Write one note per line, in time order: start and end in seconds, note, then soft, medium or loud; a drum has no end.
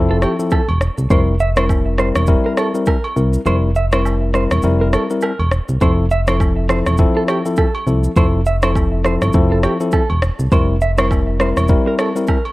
0.00 0.26 F1 loud
0.00 0.35 F3 medium
0.00 0.35 C4 medium
0.00 0.35 E4 medium
0.00 0.35 A4 loud
0.11 0.17 A4 medium
0.22 0.31 G4 medium
0.22 cross-stick medium
0.22 high agogo medium
0.22 shaker medium
0.39 0.60 F3 medium
0.39 0.60 C4 medium
0.39 0.60 E4 medium
0.39 0.60 A4 medium
0.39 shaker medium
0.51 0.67 A4 medium
0.51 kick medium
0.51 low woodblock medium
0.51 shaker medium
0.69 0.90 E1 medium
0.69 high agogo medium
0.81 cross-stick medium
0.81 shaker medium
0.98 1.07 C2 medium
0.98 shaker medium
1.10 2.12 F1 loud
1.10 1.34 G3 medium
1.10 1.34 C4 medium
1.10 1.34 E4 medium
1.10 1.34 A#4 loud
1.10 1.20 C5 medium
1.10 kick loud
1.10 high agogo medium
1.10 shaker medium
1.40 1.49 E5 medium
1.40 shaker medium
1.57 1.96 G3 medium
1.57 1.96 C4 medium
1.57 1.96 E4 medium
1.57 1.96 A#4 medium
1.57 1.64 C5 medium
1.57 cross-stick loud
1.57 high agogo medium
1.57 shaker medium
1.69 kick loud
1.69 low woodblock medium
1.69 shaker medium
1.98 2.26 G3 medium
1.98 2.26 C4 medium
1.98 2.26 E4 medium
1.98 2.26 A#4 medium
1.98 2.08 C5 medium
1.98 cross-stick medium
1.98 shaker medium
2.15 2.37 E1 medium
2.15 cross-stick loud
2.15 high agogo medium
2.15 shaker medium
2.27 2.70 G3 medium
2.27 2.70 C4 medium
2.27 2.71 E4 medium
2.27 2.71 A#4 loud
2.27 kick loud
2.27 shaker medium
2.46 2.52 A#4 medium
2.57 2.67 A4 medium
2.57 cross-stick loud
2.57 high agogo medium
2.57 shaker medium
2.74 2.95 G3 medium
2.74 2.95 C4 medium
2.74 2.95 E4 medium
2.74 2.96 A#4 medium
2.74 shaker medium
2.86 3.03 A#4 medium
2.86 kick medium
2.86 low woodblock medium
2.86 shaker medium
3.04 high agogo medium
3.16 3.37 C2 medium
3.16 3.39 G3 medium
3.16 3.39 C4 medium
3.16 3.40 E4 medium
3.16 3.40 A#4 medium
3.16 shaker medium
3.33 shaker medium
3.45 4.47 F1 loud
3.45 3.69 G3 medium
3.45 3.69 C4 medium
3.45 3.69 E4 medium
3.45 3.69 A#4 loud
3.45 3.55 C5 medium
3.45 high agogo medium
3.45 shaker medium
3.75 3.84 E5 medium
3.75 shaker medium
3.92 4.31 G3 medium
3.92 4.31 C4 medium
3.92 4.31 E4 medium
3.92 4.31 A#4 medium
3.92 3.99 C5 medium
3.92 cross-stick loud
3.92 high agogo medium
3.92 shaker medium
4.05 low woodblock medium
4.05 shaker medium
4.34 4.61 G3 medium
4.34 4.62 C4 medium
4.34 4.62 E4 medium
4.34 4.62 A#4 medium
4.34 4.43 C5 medium
4.34 cross-stick medium
4.34 shaker medium
4.51 4.60 E1 medium
4.51 cross-stick loud
4.51 high agogo medium
4.51 shaker medium
4.62 4.97 F1 loud
4.62 5.06 G3 medium
4.62 5.06 C4 medium
4.62 5.06 E4 medium
4.62 5.06 A#4 medium
4.62 shaker medium
4.81 4.87 A#4 medium
4.93 5.02 A4 medium
4.93 cross-stick loud
4.93 high agogo medium
4.93 shaker medium
5.10 5.31 G3 medium
5.10 5.31 C4 medium
5.10 5.31 E4 medium
5.10 5.31 A#4 medium
5.10 shaker medium
5.21 5.38 A#4 medium
5.21 low woodblock medium
5.21 shaker medium
5.39 5.60 E1 medium
5.39 high agogo medium
5.51 cross-stick medium
5.51 shaker medium
5.69 5.78 C2 medium
5.69 shaker medium
5.81 6.83 F1 loud
5.81 6.04 F3 medium
5.81 6.04 C4 medium
5.81 6.04 E4 medium
5.81 6.05 A4 loud
5.81 5.90 C5 medium
5.81 kick loud
5.81 high agogo medium
5.81 shaker medium
6.11 6.20 E5 medium
6.11 shaker medium
6.27 6.66 F3 medium
6.27 6.66 C4 medium
6.27 6.66 E4 medium
6.27 6.67 A4 medium
6.27 6.34 C5 medium
6.27 cross-stick loud
6.27 high agogo medium
6.27 shaker medium
6.40 kick medium
6.40 low woodblock medium
6.40 shaker medium
6.69 6.97 F3 medium
6.69 6.97 C4 medium
6.69 6.97 E4 medium
6.69 6.97 A4 medium
6.69 6.79 C5 medium
6.69 cross-stick loud
6.69 shaker medium
6.86 7.07 E1 medium
6.86 cross-stick medium
6.86 high agogo medium
6.86 shaker medium
6.98 7.41 F3 medium
6.98 7.41 C4 medium
6.98 7.41 E4 medium
6.98 7.41 A4 loud
6.98 kick loud
6.98 shaker medium
7.17 7.23 A4 medium
7.28 7.37 G4 medium
7.28 cross-stick loud
7.28 high agogo medium
7.28 shaker medium
7.45 7.66 F3 medium
7.45 7.66 C4 medium
7.45 7.66 E4 medium
7.45 7.66 A4 medium
7.45 shaker medium
7.56 7.73 A4 medium
7.56 kick medium
7.56 low woodblock medium
7.56 shaker medium
7.75 high agogo medium
7.87 8.08 C2 medium
7.87 8.10 F3 medium
7.87 8.10 C4 medium
7.87 8.10 E4 medium
7.87 8.11 A4 medium
7.87 shaker medium
8.04 shaker medium
8.16 9.18 F1 loud
8.16 8.40 F3 medium
8.16 8.40 C4 medium
8.16 8.40 E4 medium
8.16 8.40 A4 loud
8.16 8.26 C5 medium
8.16 kick loud
8.16 high agogo medium
8.16 shaker medium
8.46 8.55 E5 medium
8.46 shaker medium
8.62 9.02 F3 medium
8.62 9.02 C4 medium
8.62 9.02 E4 medium
8.62 9.02 A4 medium
8.62 8.70 C5 medium
8.62 cross-stick loud
8.62 high agogo medium
8.62 shaker medium
8.76 kick loud
8.76 low woodblock medium
8.76 shaker medium
9.04 9.32 F3 medium
9.04 9.32 C4 medium
9.04 9.32 E4 medium
9.04 9.32 A4 medium
9.04 9.14 C5 medium
9.04 cross-stick medium
9.04 shaker medium
9.22 9.31 G1 medium
9.22 cross-stick medium
9.22 high agogo medium
9.22 shaker medium
9.33 9.67 F1 loud
9.33 9.76 F3 medium
9.33 9.77 C4 medium
9.33 9.77 E4 medium
9.33 9.77 A4 loud
9.33 kick loud
9.33 shaker medium
9.52 9.58 A4 medium
9.63 9.73 G4 medium
9.63 cross-stick loud
9.63 high agogo medium
9.63 shaker medium
9.80 10.01 F3 medium
9.80 10.01 C4 medium
9.80 10.01 E4 medium
9.80 10.02 A4 medium
9.80 shaker medium
9.92 10.08 A4 medium
9.92 kick medium
9.92 low woodblock medium
9.92 shaker medium
10.10 10.31 E1 medium
10.10 high agogo medium
10.22 cross-stick loud
10.22 shaker medium
10.39 10.48 C2 medium
10.39 shaker medium
10.52 11.53 F1 loud
10.52 10.75 G3 medium
10.52 10.75 C4 medium
10.52 10.75 E4 medium
10.52 10.75 A#4 loud
10.52 10.61 C5 medium
10.52 kick loud
10.52 high agogo medium
10.52 shaker medium
10.81 10.90 E5 medium
10.81 shaker medium
10.98 11.37 G3 medium
10.98 11.37 C4 medium
10.98 11.37 E4 medium
10.98 11.37 A#4 medium
10.98 11.05 C5 medium
10.98 cross-stick loud
10.98 high agogo medium
10.98 shaker medium
11.11 kick medium
11.11 low woodblock medium
11.11 shaker medium
11.40 11.67 G3 medium
11.40 11.67 C4 medium
11.40 11.68 E4 medium
11.40 11.68 A#4 medium
11.40 11.49 C5 medium
11.40 cross-stick medium
11.40 shaker medium
11.57 11.78 E1 medium
11.57 cross-stick medium
11.57 high agogo medium
11.57 shaker medium
11.68 12.12 G3 medium
11.68 12.12 C4 medium
11.68 12.12 E4 medium
11.68 12.12 A#4 loud
11.68 kick loud
11.68 shaker medium
11.88 11.93 A#4 medium
11.99 12.08 A4 medium
11.99 cross-stick loud
11.99 high agogo medium
11.99 shaker medium
12.15 12.37 G3 medium
12.15 12.37 C4 medium
12.15 12.37 E4 medium
12.15 12.37 A#4 medium
12.15 shaker medium
12.27 12.44 A#4 medium
12.27 kick medium
12.27 low woodblock medium
12.27 shaker medium
12.45 high agogo medium